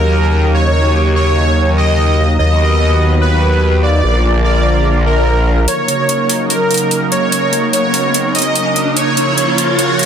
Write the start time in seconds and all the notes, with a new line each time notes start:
Already playing: D#2 C#3 F#3 A#3 D#4 A#4
0.54 C#5
1.16 C#5
1.77 D#5
2.39 D#2 D#3 F#3 B3 F#4 B4 D#5
3.21 B4
3.83 D5
4.03 A#1 D3 F3 A#3 F4 A#4
4.44 D5
5.06 A#4
5.68 C#3 F#3 A#3 D#4 A#4 C#5, closed hi-hat, riser
5.88 closed hi-hat
6.09 closed hi-hat
6.29 open hi-hat
6.50 A#4, closed hi-hat
6.71 closed hi-hat
6.74 closed hi-hat
6.77 closed hi-hat
6.91 closed hi-hat
7.12 C#5, closed hi-hat
7.32 closed hi-hat
7.53 closed hi-hat
7.73 C#5, closed hi-hat
7.94 open hi-hat
8.14 closed hi-hat
8.35 D#5, closed hi-hat
8.39 closed hi-hat
8.42 closed hi-hat
8.55 closed hi-hat
8.76 closed hi-hat
8.97 C#3 F3 A#3 F4 C#5, closed hi-hat
9.17 closed hi-hat
9.38 closed hi-hat
9.58 open hi-hat
9.79 C#5, closed hi-hat
9.99 closed hi-hat